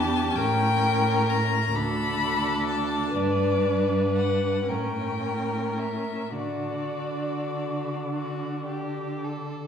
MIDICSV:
0, 0, Header, 1, 5, 480
1, 0, Start_track
1, 0, Key_signature, 2, "major"
1, 0, Tempo, 917431
1, 195, Time_signature, 6, 3, 24, 8
1, 1157, Tempo, 978793
1, 2117, Tempo, 1060071
1, 2597, Tempo, 1167315
1, 3557, Tempo, 1109057
1, 4469, End_track
2, 0, Start_track
2, 0, Title_t, "Violin"
2, 0, Program_c, 0, 40
2, 0, Note_on_c, 0, 81, 88
2, 186, Note_on_c, 0, 79, 91
2, 194, Note_off_c, 0, 81, 0
2, 678, Note_on_c, 0, 82, 76
2, 685, Note_off_c, 0, 79, 0
2, 917, Note_on_c, 0, 83, 86
2, 925, Note_off_c, 0, 82, 0
2, 1383, Note_off_c, 0, 83, 0
2, 1386, Note_on_c, 0, 81, 75
2, 1619, Note_on_c, 0, 74, 71
2, 1627, Note_off_c, 0, 81, 0
2, 2112, Note_off_c, 0, 74, 0
2, 2115, Note_on_c, 0, 78, 59
2, 2353, Note_on_c, 0, 79, 51
2, 2360, Note_off_c, 0, 78, 0
2, 2829, Note_on_c, 0, 76, 52
2, 2835, Note_off_c, 0, 79, 0
2, 3065, Note_off_c, 0, 76, 0
2, 3067, Note_on_c, 0, 74, 52
2, 4258, Note_off_c, 0, 74, 0
2, 4469, End_track
3, 0, Start_track
3, 0, Title_t, "Violin"
3, 0, Program_c, 1, 40
3, 0, Note_on_c, 1, 67, 68
3, 199, Note_on_c, 1, 70, 65
3, 206, Note_off_c, 1, 67, 0
3, 915, Note_on_c, 1, 69, 59
3, 922, Note_off_c, 1, 70, 0
3, 1619, Note_off_c, 1, 69, 0
3, 1622, Note_on_c, 1, 71, 49
3, 2354, Note_on_c, 1, 70, 42
3, 2360, Note_off_c, 1, 71, 0
3, 3069, Note_off_c, 1, 70, 0
3, 3072, Note_on_c, 1, 66, 35
3, 3737, Note_off_c, 1, 66, 0
3, 3800, Note_on_c, 1, 66, 34
3, 4021, Note_off_c, 1, 66, 0
3, 4038, Note_on_c, 1, 67, 33
3, 4284, Note_on_c, 1, 69, 32
3, 4290, Note_off_c, 1, 67, 0
3, 4469, Note_off_c, 1, 69, 0
3, 4469, End_track
4, 0, Start_track
4, 0, Title_t, "Viola"
4, 0, Program_c, 2, 41
4, 0, Note_on_c, 2, 62, 80
4, 177, Note_off_c, 2, 62, 0
4, 193, Note_on_c, 2, 61, 65
4, 915, Note_on_c, 2, 62, 60
4, 922, Note_off_c, 2, 61, 0
4, 2350, Note_off_c, 2, 62, 0
4, 2353, Note_on_c, 2, 61, 44
4, 3059, Note_off_c, 2, 61, 0
4, 3075, Note_on_c, 2, 62, 40
4, 4400, Note_off_c, 2, 62, 0
4, 4469, End_track
5, 0, Start_track
5, 0, Title_t, "Cello"
5, 0, Program_c, 3, 42
5, 0, Note_on_c, 3, 40, 67
5, 183, Note_off_c, 3, 40, 0
5, 201, Note_on_c, 3, 45, 68
5, 903, Note_off_c, 3, 45, 0
5, 921, Note_on_c, 3, 38, 56
5, 1613, Note_off_c, 3, 38, 0
5, 1628, Note_on_c, 3, 43, 58
5, 2350, Note_on_c, 3, 45, 46
5, 2357, Note_off_c, 3, 43, 0
5, 3072, Note_off_c, 3, 45, 0
5, 3075, Note_on_c, 3, 50, 38
5, 4400, Note_off_c, 3, 50, 0
5, 4469, End_track
0, 0, End_of_file